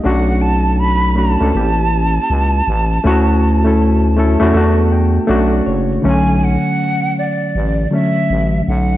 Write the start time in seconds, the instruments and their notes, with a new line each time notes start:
0.04 fm bass B1, reed electric piano A3 C#4 D4 F#4, flute F#5
0.41 flute A5
0.79 flute B5
1.15 reed electric piano A3 C#4 D4 F#4, flute A5
1.40 fm bass C#2, reed electric piano A3 C#4 D4 A4
1.54 fm bass A1, reed electric piano A#3 C4 E4 G4
1.62 reed electric piano C#4
2.30 fm bass C#2
2.67 fm bass A1
3.03 fm bass D2, reed electric piano A3 C#4 E4 F#4
3.65 reed electric piano A3 C#4 E4 A4
4.16 reed electric piano A3 C#4 E4 A4
4.40 fm bass E2, reed electric piano A3 C#4 E4 F#4
4.54 fm bass E2, reed electric piano A3 B3 D4 F#4
4.92 reed electric piano G5
5.27 fm bass B1, reed electric piano A3 C#4 D4 F#4 F#5
5.53 reed electric piano D5
5.67 fm bass F#1, reed electric piano C#5
6.02 fm bass B1, reed electric piano D3 F#3 A3 C#4
6.06 flute G#5
6.44 flute F#5
7.19 flute D5
7.55 fm bass A1
7.90 reed electric piano D3 F#3 A3 C#4, flute E5
8.30 fm bass A1
8.67 fm bass B1, flute F#5